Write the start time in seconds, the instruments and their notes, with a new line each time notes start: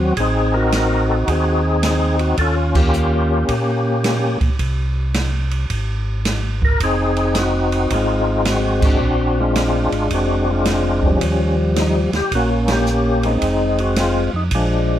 Already playing: tonewheel organ D#2 F#3 C4
0.00 tonewheel organ F#4
0.17 tonewheel organ A1 C4 D#4 G#4, kick, ride
0.54 tonewheel organ D#4 F#4 A#4
0.72 snare, hi-hat pedal, ride
1.09 tonewheel organ A4
1.27 tonewheel organ D#2 C4 G#4, kick, ride
1.32 tonewheel organ D#4
1.83 snare, hi-hat pedal, ride
2.19 tonewheel organ F#4, ride
2.37 tonewheel organ D#2 C#4 F4 A4, kick, ride
2.75 tonewheel organ A#3 C#4 G4, kick, crash
2.93 hi-hat pedal
3.48 tonewheel organ A#2, kick, ride
4.04 snare, hi-hat pedal, ride
4.41 tonewheel organ A#2, kick, ride
4.59 tonewheel organ C2, kick, ride
5.14 snare, hi-hat pedal, ride
5.51 ride
5.70 tonewheel organ G#1, kick, ride
6.25 snare, hi-hat pedal, ride
6.62 tonewheel organ A#4, kick
6.80 tonewheel organ F1 C4 D#4 G#4, kick, ride
7.16 ride
7.35 tonewheel organ D#4 F#4, snare, hi-hat pedal, ride
7.39 tonewheel organ C4
7.72 ride
7.90 tonewheel organ G#1 C4 F4, kick, ride
7.94 tonewheel organ G#3
8.45 tonewheel organ F#4, snare, hi-hat pedal, ride
8.82 tonewheel organ C4 D4 F#4, kick, crash
9.00 tonewheel organ A#1
9.40 tonewheel organ G#3 D4 F4
9.55 snare, hi-hat pedal, ride
9.92 tonewheel organ G#1, ride
10.10 tonewheel organ F1 C4 D4 F#4, kick, ride
10.50 tonewheel organ G#3 D4 F4
10.65 snare, hi-hat pedal, ride
11.03 tonewheel organ F3 G3 C#4, kick
11.21 tonewheel organ D#2, kick, ride
11.76 tonewheel organ D#4, snare, hi-hat pedal, ride
12.13 tonewheel organ D#2 G4, snare, ride
12.31 tonewheel organ A#1 A#3 C#4 F#4, kick, ride
12.68 tonewheel organ A#3, snare, ride
12.72 tonewheel organ C#4 G4
12.86 hi-hat pedal
13.23 tonewheel organ G#3 C4 D#4, ride
13.41 tonewheel organ F1, kick, ride
13.78 tonewheel organ F#4, ride
13.96 tonewheel organ F4, snare, hi-hat pedal, ride
14.33 tonewheel organ F2 D#4
14.51 tonewheel organ A#1 G#3 D4, kick, ride
14.55 tonewheel organ F3